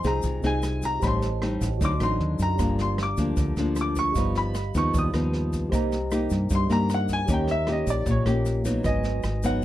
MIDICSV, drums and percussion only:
0, 0, Header, 1, 2, 480
1, 0, Start_track
1, 0, Tempo, 391134
1, 1258, Time_signature, 4, 2, 24, 8
1, 11839, End_track
2, 0, Start_track
2, 0, Title_t, "Drums"
2, 41, Note_on_c, 9, 82, 62
2, 52, Note_on_c, 9, 36, 23
2, 57, Note_on_c, 9, 38, 25
2, 164, Note_off_c, 9, 82, 0
2, 175, Note_off_c, 9, 36, 0
2, 179, Note_off_c, 9, 38, 0
2, 274, Note_on_c, 9, 82, 62
2, 292, Note_on_c, 9, 36, 57
2, 293, Note_on_c, 9, 38, 23
2, 397, Note_off_c, 9, 82, 0
2, 415, Note_off_c, 9, 36, 0
2, 416, Note_off_c, 9, 38, 0
2, 527, Note_on_c, 9, 82, 27
2, 536, Note_on_c, 9, 38, 23
2, 649, Note_off_c, 9, 82, 0
2, 658, Note_off_c, 9, 38, 0
2, 766, Note_on_c, 9, 82, 58
2, 775, Note_on_c, 9, 37, 57
2, 775, Note_on_c, 9, 38, 24
2, 889, Note_off_c, 9, 82, 0
2, 898, Note_off_c, 9, 37, 0
2, 898, Note_off_c, 9, 38, 0
2, 1010, Note_on_c, 9, 82, 64
2, 1018, Note_on_c, 9, 36, 23
2, 1022, Note_on_c, 9, 38, 23
2, 1133, Note_off_c, 9, 82, 0
2, 1141, Note_off_c, 9, 36, 0
2, 1144, Note_off_c, 9, 38, 0
2, 1248, Note_on_c, 9, 82, 65
2, 1258, Note_on_c, 9, 36, 56
2, 1260, Note_on_c, 9, 38, 24
2, 1371, Note_off_c, 9, 82, 0
2, 1380, Note_off_c, 9, 36, 0
2, 1383, Note_off_c, 9, 38, 0
2, 1496, Note_on_c, 9, 82, 26
2, 1499, Note_on_c, 9, 38, 24
2, 1619, Note_off_c, 9, 82, 0
2, 1622, Note_off_c, 9, 38, 0
2, 1740, Note_on_c, 9, 37, 61
2, 1740, Note_on_c, 9, 38, 24
2, 1863, Note_off_c, 9, 37, 0
2, 1863, Note_off_c, 9, 38, 0
2, 1980, Note_on_c, 9, 36, 26
2, 1982, Note_on_c, 9, 82, 61
2, 1987, Note_on_c, 9, 38, 23
2, 2103, Note_off_c, 9, 36, 0
2, 2104, Note_off_c, 9, 82, 0
2, 2110, Note_off_c, 9, 38, 0
2, 2217, Note_on_c, 9, 38, 23
2, 2220, Note_on_c, 9, 36, 57
2, 2227, Note_on_c, 9, 82, 59
2, 2340, Note_off_c, 9, 38, 0
2, 2342, Note_off_c, 9, 36, 0
2, 2350, Note_off_c, 9, 82, 0
2, 2457, Note_on_c, 9, 37, 59
2, 2457, Note_on_c, 9, 38, 25
2, 2457, Note_on_c, 9, 82, 26
2, 2580, Note_off_c, 9, 37, 0
2, 2580, Note_off_c, 9, 38, 0
2, 2580, Note_off_c, 9, 82, 0
2, 2705, Note_on_c, 9, 38, 24
2, 2828, Note_off_c, 9, 38, 0
2, 2932, Note_on_c, 9, 82, 64
2, 2940, Note_on_c, 9, 36, 23
2, 2944, Note_on_c, 9, 38, 23
2, 3055, Note_off_c, 9, 82, 0
2, 3063, Note_off_c, 9, 36, 0
2, 3066, Note_off_c, 9, 38, 0
2, 3176, Note_on_c, 9, 82, 66
2, 3180, Note_on_c, 9, 36, 60
2, 3180, Note_on_c, 9, 37, 58
2, 3180, Note_on_c, 9, 38, 22
2, 3299, Note_off_c, 9, 82, 0
2, 3303, Note_off_c, 9, 36, 0
2, 3303, Note_off_c, 9, 37, 0
2, 3303, Note_off_c, 9, 38, 0
2, 3418, Note_on_c, 9, 82, 26
2, 3421, Note_on_c, 9, 38, 24
2, 3541, Note_off_c, 9, 82, 0
2, 3544, Note_off_c, 9, 38, 0
2, 3660, Note_on_c, 9, 37, 57
2, 3660, Note_on_c, 9, 38, 25
2, 3782, Note_off_c, 9, 37, 0
2, 3782, Note_off_c, 9, 38, 0
2, 3893, Note_on_c, 9, 82, 65
2, 3897, Note_on_c, 9, 36, 25
2, 3897, Note_on_c, 9, 38, 24
2, 4015, Note_off_c, 9, 82, 0
2, 4020, Note_off_c, 9, 36, 0
2, 4020, Note_off_c, 9, 38, 0
2, 4131, Note_on_c, 9, 82, 62
2, 4132, Note_on_c, 9, 38, 24
2, 4135, Note_on_c, 9, 36, 60
2, 4254, Note_off_c, 9, 82, 0
2, 4255, Note_off_c, 9, 38, 0
2, 4258, Note_off_c, 9, 36, 0
2, 4375, Note_on_c, 9, 82, 26
2, 4378, Note_on_c, 9, 38, 25
2, 4498, Note_off_c, 9, 82, 0
2, 4501, Note_off_c, 9, 38, 0
2, 4611, Note_on_c, 9, 82, 56
2, 4618, Note_on_c, 9, 37, 55
2, 4618, Note_on_c, 9, 38, 24
2, 4733, Note_off_c, 9, 82, 0
2, 4741, Note_off_c, 9, 37, 0
2, 4741, Note_off_c, 9, 38, 0
2, 4855, Note_on_c, 9, 82, 65
2, 4858, Note_on_c, 9, 36, 23
2, 4861, Note_on_c, 9, 38, 23
2, 4978, Note_off_c, 9, 82, 0
2, 4981, Note_off_c, 9, 36, 0
2, 4984, Note_off_c, 9, 38, 0
2, 5094, Note_on_c, 9, 82, 64
2, 5098, Note_on_c, 9, 38, 24
2, 5099, Note_on_c, 9, 36, 61
2, 5217, Note_off_c, 9, 82, 0
2, 5221, Note_off_c, 9, 36, 0
2, 5221, Note_off_c, 9, 38, 0
2, 5339, Note_on_c, 9, 82, 25
2, 5341, Note_on_c, 9, 38, 25
2, 5462, Note_off_c, 9, 82, 0
2, 5463, Note_off_c, 9, 38, 0
2, 5578, Note_on_c, 9, 82, 55
2, 5581, Note_on_c, 9, 37, 64
2, 5581, Note_on_c, 9, 38, 25
2, 5701, Note_off_c, 9, 82, 0
2, 5703, Note_off_c, 9, 37, 0
2, 5703, Note_off_c, 9, 38, 0
2, 5821, Note_on_c, 9, 82, 66
2, 5823, Note_on_c, 9, 36, 25
2, 5825, Note_on_c, 9, 38, 25
2, 5943, Note_off_c, 9, 82, 0
2, 5946, Note_off_c, 9, 36, 0
2, 5947, Note_off_c, 9, 38, 0
2, 6063, Note_on_c, 9, 36, 58
2, 6063, Note_on_c, 9, 38, 24
2, 6063, Note_on_c, 9, 82, 67
2, 6186, Note_off_c, 9, 36, 0
2, 6186, Note_off_c, 9, 38, 0
2, 6186, Note_off_c, 9, 82, 0
2, 6299, Note_on_c, 9, 82, 27
2, 6304, Note_on_c, 9, 37, 58
2, 6304, Note_on_c, 9, 38, 23
2, 6422, Note_off_c, 9, 82, 0
2, 6427, Note_off_c, 9, 37, 0
2, 6427, Note_off_c, 9, 38, 0
2, 6544, Note_on_c, 9, 38, 23
2, 6667, Note_off_c, 9, 38, 0
2, 6783, Note_on_c, 9, 36, 24
2, 6783, Note_on_c, 9, 38, 22
2, 6783, Note_on_c, 9, 82, 66
2, 6905, Note_off_c, 9, 36, 0
2, 6905, Note_off_c, 9, 82, 0
2, 6906, Note_off_c, 9, 38, 0
2, 7019, Note_on_c, 9, 37, 57
2, 7019, Note_on_c, 9, 38, 22
2, 7024, Note_on_c, 9, 36, 55
2, 7031, Note_on_c, 9, 82, 63
2, 7142, Note_off_c, 9, 37, 0
2, 7142, Note_off_c, 9, 38, 0
2, 7146, Note_off_c, 9, 36, 0
2, 7154, Note_off_c, 9, 82, 0
2, 7266, Note_on_c, 9, 82, 26
2, 7267, Note_on_c, 9, 38, 24
2, 7388, Note_off_c, 9, 82, 0
2, 7390, Note_off_c, 9, 38, 0
2, 7500, Note_on_c, 9, 82, 58
2, 7506, Note_on_c, 9, 37, 59
2, 7506, Note_on_c, 9, 38, 26
2, 7622, Note_off_c, 9, 82, 0
2, 7629, Note_off_c, 9, 37, 0
2, 7629, Note_off_c, 9, 38, 0
2, 7732, Note_on_c, 9, 82, 67
2, 7746, Note_on_c, 9, 36, 24
2, 7754, Note_on_c, 9, 38, 26
2, 7855, Note_off_c, 9, 82, 0
2, 7868, Note_off_c, 9, 36, 0
2, 7877, Note_off_c, 9, 38, 0
2, 7973, Note_on_c, 9, 82, 63
2, 7984, Note_on_c, 9, 36, 62
2, 7986, Note_on_c, 9, 38, 23
2, 8096, Note_off_c, 9, 82, 0
2, 8107, Note_off_c, 9, 36, 0
2, 8109, Note_off_c, 9, 38, 0
2, 8222, Note_on_c, 9, 82, 26
2, 8225, Note_on_c, 9, 38, 24
2, 8345, Note_off_c, 9, 82, 0
2, 8348, Note_off_c, 9, 38, 0
2, 8462, Note_on_c, 9, 82, 59
2, 8465, Note_on_c, 9, 37, 58
2, 8465, Note_on_c, 9, 38, 24
2, 8585, Note_off_c, 9, 82, 0
2, 8588, Note_off_c, 9, 37, 0
2, 8588, Note_off_c, 9, 38, 0
2, 8695, Note_on_c, 9, 82, 61
2, 8699, Note_on_c, 9, 36, 23
2, 8699, Note_on_c, 9, 38, 22
2, 8818, Note_off_c, 9, 82, 0
2, 8821, Note_off_c, 9, 36, 0
2, 8822, Note_off_c, 9, 38, 0
2, 8933, Note_on_c, 9, 82, 65
2, 8937, Note_on_c, 9, 38, 24
2, 8938, Note_on_c, 9, 36, 58
2, 9056, Note_off_c, 9, 82, 0
2, 9060, Note_off_c, 9, 38, 0
2, 9061, Note_off_c, 9, 36, 0
2, 9174, Note_on_c, 9, 38, 24
2, 9183, Note_on_c, 9, 82, 26
2, 9297, Note_off_c, 9, 38, 0
2, 9306, Note_off_c, 9, 82, 0
2, 9411, Note_on_c, 9, 37, 63
2, 9411, Note_on_c, 9, 38, 25
2, 9534, Note_off_c, 9, 37, 0
2, 9534, Note_off_c, 9, 38, 0
2, 9653, Note_on_c, 9, 38, 24
2, 9656, Note_on_c, 9, 36, 24
2, 9660, Note_on_c, 9, 82, 67
2, 9776, Note_off_c, 9, 38, 0
2, 9779, Note_off_c, 9, 36, 0
2, 9783, Note_off_c, 9, 82, 0
2, 9889, Note_on_c, 9, 38, 26
2, 9894, Note_on_c, 9, 36, 61
2, 9896, Note_on_c, 9, 82, 64
2, 10011, Note_off_c, 9, 38, 0
2, 10017, Note_off_c, 9, 36, 0
2, 10019, Note_off_c, 9, 82, 0
2, 10135, Note_on_c, 9, 37, 61
2, 10135, Note_on_c, 9, 38, 24
2, 10140, Note_on_c, 9, 82, 28
2, 10257, Note_off_c, 9, 37, 0
2, 10257, Note_off_c, 9, 38, 0
2, 10263, Note_off_c, 9, 82, 0
2, 10376, Note_on_c, 9, 82, 57
2, 10378, Note_on_c, 9, 38, 23
2, 10498, Note_off_c, 9, 82, 0
2, 10501, Note_off_c, 9, 38, 0
2, 10614, Note_on_c, 9, 82, 65
2, 10616, Note_on_c, 9, 36, 24
2, 10618, Note_on_c, 9, 38, 24
2, 10737, Note_off_c, 9, 82, 0
2, 10739, Note_off_c, 9, 36, 0
2, 10740, Note_off_c, 9, 38, 0
2, 10850, Note_on_c, 9, 82, 61
2, 10853, Note_on_c, 9, 37, 57
2, 10853, Note_on_c, 9, 38, 22
2, 10856, Note_on_c, 9, 36, 58
2, 10972, Note_off_c, 9, 82, 0
2, 10975, Note_off_c, 9, 37, 0
2, 10975, Note_off_c, 9, 38, 0
2, 10979, Note_off_c, 9, 36, 0
2, 11087, Note_on_c, 9, 82, 25
2, 11096, Note_on_c, 9, 38, 23
2, 11210, Note_off_c, 9, 82, 0
2, 11219, Note_off_c, 9, 38, 0
2, 11324, Note_on_c, 9, 82, 50
2, 11335, Note_on_c, 9, 37, 62
2, 11335, Note_on_c, 9, 38, 24
2, 11447, Note_off_c, 9, 82, 0
2, 11458, Note_off_c, 9, 37, 0
2, 11458, Note_off_c, 9, 38, 0
2, 11572, Note_on_c, 9, 82, 67
2, 11578, Note_on_c, 9, 36, 24
2, 11580, Note_on_c, 9, 38, 24
2, 11694, Note_off_c, 9, 82, 0
2, 11701, Note_off_c, 9, 36, 0
2, 11702, Note_off_c, 9, 38, 0
2, 11839, End_track
0, 0, End_of_file